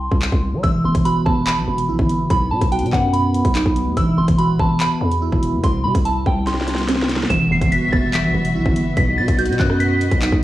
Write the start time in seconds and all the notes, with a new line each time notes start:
Already playing: C6
0.12 C2, kick
0.22 clap
0.32 C2, kick
0.53 G3
0.63 E1 E3 E6, kick, closed hi-hat
0.84 E1 B3 C6
0.95 E1, kick, closed hi-hat
1.05 F#4 B5, closed hi-hat
1.26 E1 B3 A5, kick
1.47 E3 B5, clap, closed hi-hat
1.57 B1
1.68 E1 B3
1.78 closed hi-hat
1.89 B1 E4
1.99 G1, kick
2.09 B3, closed hi-hat
2.20 F#1
2.30 B1 B2 B5, kick, closed hi-hat
2.51 B2 B3 A5
2.61 B1, kick, closed hi-hat
2.72 F#4 G5, closed hi-hat
2.79 B2, closed hi-hat
2.86 closed hi-hat
2.93 F#2 B3 F#5, kick, clap
3.13 B2 B5, closed hi-hat
3.34 B3, closed hi-hat
3.45 B1, kick, closed hi-hat
3.55 D#4, clap, closed hi-hat
3.66 B1, kick
3.76 B3, closed hi-hat
3.86 D#2
3.97 E1 E3 E6, kick, closed hi-hat
4.18 E1 B3 C6
4.28 E1, kick, closed hi-hat
4.38 F#4 B5, closed hi-hat
4.49 D#1
4.59 E1 B3 A5, kick
4.80 E3 B5, clap, closed hi-hat
5.01 E2 B3
5.11 closed hi-hat
5.22 E4
5.32 E1, kick
5.43 B3, closed hi-hat
5.53 E2
5.64 C2 C3 C6, kick, closed hi-hat
5.84 C3 G3 B5
5.95 C2, kick, closed hi-hat
6.05 E4 A5, closed hi-hat
6.26 C2 G3 G5, kick
6.47 C3 C6, snare, closed hi-hat
6.54 snare
6.61 snare
6.68 G3, snare, closed hi-hat
6.75 snare, closed hi-hat
6.82 snare
6.88 C4, snare, closed hi-hat
6.95 snare
7.02 snare
7.09 G3, snare, closed hi-hat
7.16 snare
7.23 snare
7.30 E1 E3 G3 F#4 E5 E7, kick, closed hi-hat, impact
7.51 E1 B3 C7
7.61 E1, kick, closed hi-hat
7.72 F#4 B6, closed hi-hat
7.92 E1 B3 A6, kick
8.13 E3 B6, clap, closed hi-hat
8.24 B1
8.34 E1 B3
8.45 closed hi-hat
8.55 B1 E4
8.66 G1, kick
8.76 B3, closed hi-hat
8.86 F#1
8.97 B1 B2 B3 F#4 D#5 B6, kick, closed hi-hat
9.18 B2 B3 A6
9.28 B1, kick, closed hi-hat
9.38 F#4 G6, closed hi-hat
9.46 B2, closed hi-hat
9.53 closed hi-hat
9.59 F#2 B3 F#6, kick, clap
9.70 cross-stick
9.80 B2 B6, closed hi-hat
10.01 B3, closed hi-hat
10.11 B1, kick, closed hi-hat
10.22 D#4, clap, closed hi-hat
10.32 B1, kick